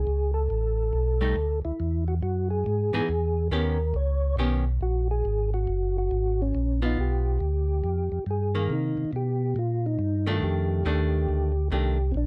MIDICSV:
0, 0, Header, 1, 4, 480
1, 0, Start_track
1, 0, Tempo, 431655
1, 66, Time_signature, 4, 2, 24, 8
1, 13639, End_track
2, 0, Start_track
2, 0, Title_t, "Tonewheel organ"
2, 0, Program_c, 0, 16
2, 0, Note_on_c, 0, 68, 78
2, 346, Note_off_c, 0, 68, 0
2, 378, Note_on_c, 0, 69, 97
2, 1775, Note_off_c, 0, 69, 0
2, 1832, Note_on_c, 0, 64, 83
2, 2273, Note_off_c, 0, 64, 0
2, 2312, Note_on_c, 0, 66, 76
2, 2386, Note_off_c, 0, 66, 0
2, 2474, Note_on_c, 0, 66, 77
2, 2761, Note_off_c, 0, 66, 0
2, 2785, Note_on_c, 0, 68, 85
2, 3868, Note_off_c, 0, 68, 0
2, 3912, Note_on_c, 0, 70, 84
2, 4405, Note_on_c, 0, 73, 81
2, 4406, Note_off_c, 0, 70, 0
2, 4845, Note_off_c, 0, 73, 0
2, 5365, Note_on_c, 0, 66, 83
2, 5648, Note_off_c, 0, 66, 0
2, 5682, Note_on_c, 0, 68, 97
2, 6119, Note_off_c, 0, 68, 0
2, 6160, Note_on_c, 0, 66, 80
2, 6639, Note_off_c, 0, 66, 0
2, 6652, Note_on_c, 0, 66, 90
2, 7131, Note_off_c, 0, 66, 0
2, 7139, Note_on_c, 0, 61, 83
2, 7568, Note_off_c, 0, 61, 0
2, 7623, Note_on_c, 0, 63, 74
2, 7761, Note_off_c, 0, 63, 0
2, 7791, Note_on_c, 0, 67, 73
2, 9166, Note_off_c, 0, 67, 0
2, 9235, Note_on_c, 0, 68, 73
2, 9701, Note_on_c, 0, 63, 70
2, 9706, Note_off_c, 0, 68, 0
2, 10132, Note_off_c, 0, 63, 0
2, 10186, Note_on_c, 0, 67, 76
2, 10661, Note_off_c, 0, 67, 0
2, 10662, Note_on_c, 0, 65, 79
2, 10964, Note_off_c, 0, 65, 0
2, 10967, Note_on_c, 0, 63, 83
2, 11446, Note_off_c, 0, 63, 0
2, 11446, Note_on_c, 0, 65, 70
2, 11516, Note_off_c, 0, 65, 0
2, 11605, Note_on_c, 0, 67, 79
2, 12990, Note_off_c, 0, 67, 0
2, 13054, Note_on_c, 0, 67, 79
2, 13472, Note_on_c, 0, 60, 67
2, 13478, Note_off_c, 0, 67, 0
2, 13516, Note_off_c, 0, 60, 0
2, 13534, Note_on_c, 0, 62, 73
2, 13639, Note_off_c, 0, 62, 0
2, 13639, End_track
3, 0, Start_track
3, 0, Title_t, "Hollow-body jazz guitar"
3, 0, Program_c, 1, 26
3, 1345, Note_on_c, 1, 55, 49
3, 1346, Note_on_c, 1, 57, 52
3, 1357, Note_on_c, 1, 63, 55
3, 1494, Note_off_c, 1, 55, 0
3, 1495, Note_off_c, 1, 57, 0
3, 1500, Note_off_c, 1, 63, 0
3, 3261, Note_on_c, 1, 52, 58
3, 3268, Note_on_c, 1, 59, 54
3, 3273, Note_on_c, 1, 63, 56
3, 3277, Note_on_c, 1, 68, 57
3, 3413, Note_off_c, 1, 52, 0
3, 3417, Note_off_c, 1, 59, 0
3, 3419, Note_off_c, 1, 63, 0
3, 3421, Note_off_c, 1, 68, 0
3, 3908, Note_on_c, 1, 51, 46
3, 3913, Note_on_c, 1, 59, 50
3, 3917, Note_on_c, 1, 61, 52
3, 3922, Note_on_c, 1, 67, 59
3, 4189, Note_off_c, 1, 51, 0
3, 4192, Note_off_c, 1, 59, 0
3, 4193, Note_off_c, 1, 61, 0
3, 4196, Note_off_c, 1, 67, 0
3, 4876, Note_on_c, 1, 51, 46
3, 4882, Note_on_c, 1, 59, 50
3, 4885, Note_on_c, 1, 61, 58
3, 4890, Note_on_c, 1, 67, 57
3, 5153, Note_off_c, 1, 51, 0
3, 5156, Note_off_c, 1, 59, 0
3, 5158, Note_off_c, 1, 61, 0
3, 5160, Note_off_c, 1, 67, 0
3, 7586, Note_on_c, 1, 59, 57
3, 7587, Note_on_c, 1, 65, 58
3, 8199, Note_off_c, 1, 59, 0
3, 8200, Note_off_c, 1, 65, 0
3, 9505, Note_on_c, 1, 51, 54
3, 9510, Note_on_c, 1, 58, 59
3, 10118, Note_off_c, 1, 51, 0
3, 10120, Note_off_c, 1, 58, 0
3, 11415, Note_on_c, 1, 51, 57
3, 11422, Note_on_c, 1, 57, 67
3, 11428, Note_on_c, 1, 62, 62
3, 12031, Note_off_c, 1, 51, 0
3, 12035, Note_off_c, 1, 57, 0
3, 12038, Note_off_c, 1, 62, 0
3, 12071, Note_on_c, 1, 51, 54
3, 12076, Note_on_c, 1, 57, 55
3, 12085, Note_on_c, 1, 62, 56
3, 12797, Note_off_c, 1, 51, 0
3, 12799, Note_off_c, 1, 57, 0
3, 12804, Note_off_c, 1, 62, 0
3, 13028, Note_on_c, 1, 51, 49
3, 13034, Note_on_c, 1, 57, 52
3, 13040, Note_on_c, 1, 62, 46
3, 13306, Note_off_c, 1, 51, 0
3, 13309, Note_off_c, 1, 57, 0
3, 13312, Note_off_c, 1, 62, 0
3, 13639, End_track
4, 0, Start_track
4, 0, Title_t, "Tonewheel organ"
4, 0, Program_c, 2, 16
4, 77, Note_on_c, 2, 37, 69
4, 538, Note_off_c, 2, 37, 0
4, 557, Note_on_c, 2, 33, 82
4, 1018, Note_off_c, 2, 33, 0
4, 1032, Note_on_c, 2, 35, 75
4, 1496, Note_off_c, 2, 35, 0
4, 1510, Note_on_c, 2, 38, 67
4, 1799, Note_off_c, 2, 38, 0
4, 1832, Note_on_c, 2, 38, 33
4, 1913, Note_off_c, 2, 38, 0
4, 1998, Note_on_c, 2, 40, 70
4, 2460, Note_off_c, 2, 40, 0
4, 2473, Note_on_c, 2, 42, 82
4, 2937, Note_off_c, 2, 42, 0
4, 2960, Note_on_c, 2, 44, 76
4, 3244, Note_off_c, 2, 44, 0
4, 3269, Note_on_c, 2, 44, 34
4, 3352, Note_off_c, 2, 44, 0
4, 3432, Note_on_c, 2, 40, 74
4, 3897, Note_off_c, 2, 40, 0
4, 3906, Note_on_c, 2, 39, 71
4, 4374, Note_off_c, 2, 39, 0
4, 4381, Note_on_c, 2, 37, 85
4, 4852, Note_off_c, 2, 37, 0
4, 4862, Note_on_c, 2, 35, 80
4, 5332, Note_off_c, 2, 35, 0
4, 5346, Note_on_c, 2, 34, 75
4, 5814, Note_off_c, 2, 34, 0
4, 5839, Note_on_c, 2, 32, 77
4, 6301, Note_off_c, 2, 32, 0
4, 6309, Note_on_c, 2, 30, 81
4, 6776, Note_off_c, 2, 30, 0
4, 6795, Note_on_c, 2, 32, 80
4, 7258, Note_off_c, 2, 32, 0
4, 7279, Note_on_c, 2, 34, 74
4, 7741, Note_off_c, 2, 34, 0
4, 7754, Note_on_c, 2, 35, 72
4, 8218, Note_off_c, 2, 35, 0
4, 8233, Note_on_c, 2, 38, 86
4, 8697, Note_off_c, 2, 38, 0
4, 8714, Note_on_c, 2, 41, 74
4, 9001, Note_off_c, 2, 41, 0
4, 9028, Note_on_c, 2, 41, 35
4, 9111, Note_off_c, 2, 41, 0
4, 9189, Note_on_c, 2, 43, 71
4, 9655, Note_off_c, 2, 43, 0
4, 9670, Note_on_c, 2, 48, 82
4, 9958, Note_off_c, 2, 48, 0
4, 9978, Note_on_c, 2, 48, 35
4, 10063, Note_off_c, 2, 48, 0
4, 10148, Note_on_c, 2, 47, 85
4, 10614, Note_off_c, 2, 47, 0
4, 10630, Note_on_c, 2, 46, 81
4, 11094, Note_off_c, 2, 46, 0
4, 11105, Note_on_c, 2, 43, 71
4, 11571, Note_off_c, 2, 43, 0
4, 11591, Note_on_c, 2, 41, 78
4, 12054, Note_off_c, 2, 41, 0
4, 12066, Note_on_c, 2, 39, 88
4, 12531, Note_off_c, 2, 39, 0
4, 12549, Note_on_c, 2, 38, 84
4, 13013, Note_off_c, 2, 38, 0
4, 13018, Note_on_c, 2, 36, 73
4, 13487, Note_off_c, 2, 36, 0
4, 13504, Note_on_c, 2, 34, 79
4, 13639, Note_off_c, 2, 34, 0
4, 13639, End_track
0, 0, End_of_file